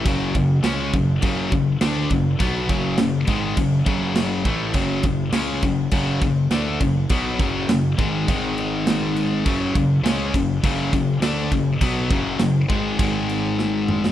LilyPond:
<<
  \new Staff \with { instrumentName = "Distorted electric guitar" } { \clef bass \time 4/4 \key fis \minor \tempo 4 = 102 <fis, cis fis>8 <fis, cis>8 <cis gis cis'>8 <fis, cis>8 <fis, cis fis>8 <fis, cis>8 <d a d'>8 <fis, cis>8 | <b, fis b>8 <fis, cis fis>8 <fis, cis>8 <gis, dis gis>8 <fis, cis>8 <fis, cis fis>4 <a, e a>8 | <fis, cis fis>8 <fis, cis>8 <cis gis cis'>8 <fis, cis>8 <fis, cis fis>8 <fis, cis>8 <d a d'>8 <fis, cis>8 | <b, fis b>8 <fis, cis fis>8 <fis, cis>8 <gis, dis gis>8 <gis, dis gis>2 |
<fis, cis fis>8 <fis, cis>8 <cis gis cis'>8 <fis, cis>8 <fis, cis fis>8 <fis, cis>8 <d a d'>8 <fis, cis>8 | <b, fis b>8 <fis, cis fis>8 <fis, cis>8 <gis, dis gis>8 <gis, dis gis>2 | }
  \new Staff \with { instrumentName = "Distorted electric guitar" } { \clef bass \time 4/4 \key fis \minor <fis, cis fis>8 <fis, cis>8 <cis gis cis'>8 <fis, cis>8 <fis, cis fis>8 <fis, cis>8 <d a d'>8 <fis, cis>8 | <b, fis b>8 <fis, cis fis>8 <fis, cis>8 <gis, dis gis>8 <fis, cis>8 <fis, cis fis>4 <a, e a>8 | <fis, cis fis>8 <fis, cis>8 <cis gis cis'>8 <fis, cis>8 <fis, cis fis>8 <fis, cis>8 <d a d'>8 <fis, cis>8 | <b, fis b>8 <fis, cis fis>8 <fis, cis>8 <gis, dis gis>8 <gis, dis gis>2 |
<fis, cis fis>8 <fis, cis>8 <cis gis cis'>8 <fis, cis>8 <fis, cis fis>8 <fis, cis>8 <d a d'>8 <fis, cis>8 | <b, fis b>8 <fis, cis fis>8 <fis, cis>8 <gis, dis gis>8 <gis, dis gis>2 | }
  \new Staff \with { instrumentName = "Picked electric bass" } { \clef bass \time 4/4 \key fis \minor fis,,8 fis,,8 cis,8 fis,,8 fis,,8 fis,,8 d,8 fis,,8 | b,,8 fis,,8 fis,,8 gis,,8 fis,,8 fis,,4 a,,8 | fis,,8 fis,,8 cis,8 fis,,8 fis,,8 fis,,8 d,8 fis,,8 | b,,8 fis,,8 fis,,8 gis,,8 gis,,2 |
fis,,8 fis,,8 cis,8 fis,,8 fis,,8 fis,,8 d,8 fis,,8 | b,,8 fis,,8 fis,,8 gis,,8 gis,,2 | }
  \new DrumStaff \with { instrumentName = "Drums" } \drummode { \time 4/4 <cymc bd>8 <cymc bd>8 <cymc sn>8 <cymc bd>8 <cymc bd>8 <cymc bd>8 <cymc sn>8 <cymc bd>8 | <cymc bd>8 <cymc bd>8 <cymc sn>8 <cymc bd>8 <cymc bd>8 <cymc bd>8 <cymc sn>8 <cymc bd>8 | <cymc bd>8 <cymc bd>8 <cymc sn>8 <cymc bd>8 <cymc bd>8 <cymc bd>8 <cymc sn>8 <cymc bd>8 | <cymc bd>8 <cymc bd>8 <cymc sn>8 <cymc bd>8 <cymc bd>8 cymc8 <cymc sn>8 cymc8 |
<cymc bd>8 <cymc bd>8 <cymc sn>8 <cymc bd>8 <cymc bd>8 <cymc bd>8 <cymc sn>8 <cymc bd>8 | <cymc bd>8 <cymc bd>8 <cymc sn>8 <cymc bd>8 <cymc bd>8 cymc8 sn8 toml16 sn16 | }
>>